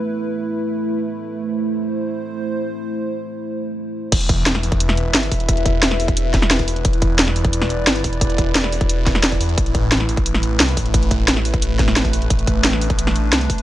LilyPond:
<<
  \new Staff \with { instrumentName = "Analog synth pad" } { \time 4/4 \key a \minor \tempo 4 = 176 << { b'1 | c''1~ | c''1 | e''1~ |
e''1 | d''1~ | d''1 | b'1~ |
b'1~ | b'1 | } \\ { <a e'>1~ | <a e'>1~ | <a e'>1 | <e' b'>1~ |
<e' b'>1~ | <e' b'>1~ | <e' b'>1 | a1~ |
a1 | d'1 | } >> }
  \new Staff \with { instrumentName = "Detuned saw bass" } { \clef bass \time 4/4 \key a \minor r1 | r1 | r1 | e,,4. e,,4. g,,8 e,,8~ |
e,,2.~ e,,8 e,,8 | e,,4. e,,4. g,,8 e,,8~ | e,,2.~ e,,8 e,8 | a,,4. a,,4. c,8 a,,8~ |
a,,2.~ a,,8 a,,8 | a,,4. a,,4. c,8 r8 | }
  \new DrumStaff \with { instrumentName = "Drums" } \drummode { \time 4/4 r4 r4 r4 r4 | r4 r4 r4 r4 | r4 r4 r4 r4 | <cymc hh bd>16 hh16 <hh bd>8 <hh sn>16 sn16 hho16 <hh bd>16 hh16 sn16 hh8 <hh sn>16 hh16 <hho bd>16 hh16 |
<hh bd>16 hh16 <hh bd>8 <hh sn>16 sn16 hho16 <hh bd>16 hh8 <hh bd sn>16 sn16 <hh sn>16 <hh bd>16 hho16 hh16 | <hh bd>16 hh16 <hh bd>8 <hh sn>16 sn16 hho16 <hh bd>16 hh16 sn16 hh8 <hh sn>16 hh16 <hho bd>16 hh16 | <hh bd>16 hh16 <hh bd>8 <hh sn>16 sn16 hho16 <hh bd>16 hh8 <hh bd sn>16 sn16 <hh sn>16 <hh bd>16 hho16 hh16 | <hh bd>16 hh16 <hh bd>8 <hh sn>16 sn16 hho16 <hh bd>16 hh16 sn16 hh8 <hh sn>16 hh16 <hho bd>16 hh16 |
<hh bd>16 hh16 <hh bd>8 <hh sn>16 sn16 hho16 <hh bd>16 hh8 <hh bd sn>16 sn16 <hh sn>16 <hh bd>16 hho16 hh16 | <hh bd>16 hh16 <hh bd>8 <hh sn>16 sn16 hho16 <hh bd>16 hh16 sn16 hh8 <hh sn>16 hh16 <hho bd>16 hh16 | }
>>